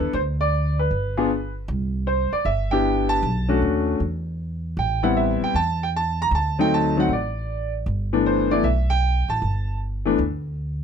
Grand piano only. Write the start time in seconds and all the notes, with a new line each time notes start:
Already playing: B3 D4 E4 A4 B4
0.14 C5
0.41 D5
0.79 B4
1.17 B3 D4 F4 G#4
2.07 C5
2.33 D5
2.45 E5
2.71 B3 D4 E4 G4 G5
3.09 A5
3.48 A3 C#4 D4 F#4
4.79 G5
5.03 G3 B3 C4 E4 F#5
5.17 E5
5.44 G5
5.56 A5
5.83 G5
5.96 A5
6.22 A#5
6.35 A5
6.59 F#3 A3 C4 D#4 G5
6.74 A5
6.97 F#3 A3 C4 D#4 F#5
7.13 D5
8.13 E3 A3 B3 D4
8.26 C5
8.51 E3 A3 B3 E4 D5
8.64 E5
8.90 G5
9.30 A5
10.05 E3 A3 B3 D4